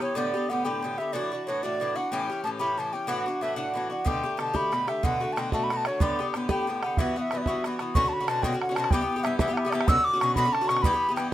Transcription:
0.00 bouzouki E3 B3 G4, flute C#5
0.15 bouzouki A2 D3 B3 G4, flute D5
0.34 bouzouki D3 B3 G4
0.49 bouzouki A2 D3 B3 G4, flute F#5
0.64 bouzouki A2 D3 B3 G4, flute G5
0.82 bouzouki A2 D3 B3 G4
0.98 bouzouki D3 B3 G4, flute E5
1.13 bouzouki A2 E3 D4 F#4, flute D5
1.32 bouzouki E3 D4 F#4
1.47 bouzouki A2 E3 D4 F#4, flute C#5
1.63 bouzouki A2 E3 D4 F#4, flute D5
1.80 bouzouki A2 E3 D4 F#4
1.96 bouzouki E3 D4 F#4, flute F#5
2.12 bouzouki A2 E3 C#4 G4, flute G5
2.30 bouzouki E3 C#4 G4
2.44 bouzouki A2 E3 C#4 G4, flute A5
2.59 bouzouki A2 E3 C#4 G4, flute B5
2.77 bouzouki A2 E3 C#4 G4, flute A5
2.93 bouzouki E3 C#4 G4, flute G5
3.07 bouzouki A2 E3 D4 F#4, flute F#5
3.26 bouzouki E3 D4 F#4
3.41 bouzouki A2 E3 D4 F#4, flute E5
3.56 bouzouki A2 E3 D4 F#4, flute F#5
3.74 bouzouki A2 E3 D4 F#4
3.90 bouzouki E3 D4 F#4, flute F#5
4.05 bouzouki B2 D3 A3 G4, flute G5, bodhran
4.24 bouzouki D3 A3 G4
4.37 bouzouki B2 D3 A3 G4, flute A5, bodhran
4.54 bouzouki B2 D3 A3 G4, flute B5, bodhran
4.72 bouzouki B2 D3 A3 G4, bodhran
4.87 bouzouki D3 A3 G4, flute E5, bodhran
5.03 bouzouki B2 D3 A3 F#4, flute F#5, bodhran
5.20 bouzouki D3 A3 F#4
5.33 bouzouki B2, flute A5
5.37 bouzouki D3 A3 F#4, flute G5, bodhran
5.52 bouzouki B2 D3 A3 F#4, flute A5, bodhran
5.64 flute B5
5.70 bouzouki B2 D3 A3 F#4, bodhran
5.77 flute A5
5.85 bouzouki D3 A3 F#4, flute C#5, bodhran
6.00 bouzouki A2 D3 B3 G4, flute D5, bodhran
6.19 bouzouki D3 B3 G4
6.34 bouzouki A2 D3 B3 G4, bodhran
6.49 bouzouki A2 D3 B3 G4, flute G5, bodhran
6.67 bouzouki A2 D3 B3 G4
6.83 bouzouki D3 B3 G4, flute F#5, bodhran
6.97 bouzouki G2 E3 B3 F#4, flute E5, bodhran
7.16 bouzouki E3 B3 F#4, flute F#5
7.22 flute E5
7.31 bouzouki G2 E3 B3 F#4, bodhran
7.37 flute D5
7.42 flute E5, bodhran
7.47 bouzouki G2 E3 B3 F#4
7.64 bouzouki G2 E3 B3 F#4, bodhran
7.79 bouzouki E3 B3 F#4, bodhran
7.95 bouzouki B2 D3 C#4 F#4, flute C#6, bodhran
8.04 bouzouki D3 C#4 F#4
8.08 flute A5
8.13 flute B5
8.20 bouzouki D3 C#4 F#4
8.28 bouzouki B2 D3 C#4 F#4, flute A5, bodhran
8.43 bouzouki B2 D3 C#4 F#4, flute G5, bodhran
8.52 bouzouki D3 C#4 F#4
8.61 flute F#5, bodhran
8.69 bouzouki D3 C#4 F#4
8.75 bouzouki B2 D3 C#4, flute A5, bodhran
8.79 bouzouki F#4
8.84 bodhran
8.91 bouzouki G2 E3 B3 G4, flute G5, bodhran
9.01 bouzouki E3 B3 G4
9.16 bouzouki E3 B3 G4
9.24 bouzouki G2 E3 B3 G4, flute E5, bodhran
9.39 bouzouki G2 E3 B3 G4, flute E5, bodhran
9.48 bouzouki E3 B3 G4
9.54 flute E5 F#5, bodhran
9.65 bouzouki E3 B3 G4
9.70 bouzouki G2 E3, flute D5 E5, bodhran
9.74 bouzouki B3 G4
9.81 bodhran
9.88 bouzouki B2 D3 C#4 F#4, flute E6, bodhran
9.96 bouzouki D3 C#4 F#4
10.04 flute D6
10.13 bouzouki D3 C#4 F#4
10.20 bouzouki B2 D3 C#4 F#4, flute C#6, bodhran
10.35 bouzouki B2 D3 C#4 F#4, flute B5, bodhran
10.45 bouzouki D3 C#4 F#4
10.53 flute A5, bodhran
10.61 bouzouki D3 C#4 F#4
10.68 bouzouki B2 D3 C#4 F#4, flute C#6, bodhran
10.77 bodhran
10.82 bouzouki G2 E3 B3, flute B5, bodhran
10.86 bouzouki G4
10.93 bouzouki E3 B3 G4
11.09 bouzouki E3 B3 G4
11.16 bouzouki G2 E3 B3 G4, flute G5, bodhran

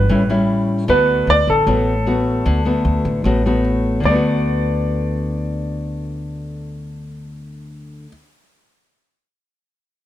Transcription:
Already playing: grand piano B4
0.09 upright bass A1, nylon-string guitar A2 G3 C#4 E4
0.29 nylon-string guitar G3 C#4 E4
0.88 upright bass D2, nylon-string guitar D3 A3 B3 F#4, grand piano B4
1.27 upright bass D2, grand piano D5
1.47 upright bass A1, grand piano A4
1.67 upright bass A1, nylon-string guitar A2 A3 B3 F#4
2.06 nylon-string guitar A3 B3 F#4
2.46 upright bass D2, nylon-string guitar D3
2.65 nylon-string guitar A3 B3 F#4
2.85 upright bass D2
3.05 upright bass A1
3.24 upright bass A1, nylon-string guitar A2 A3 B3 F#4
3.46 nylon-string guitar A3 B3 F#4
4.00 upright bass D2, nylon-string guitar D3
4.05 nylon-string guitar A3, grand piano D5
4.10 nylon-string guitar B3
4.15 nylon-string guitar F#4

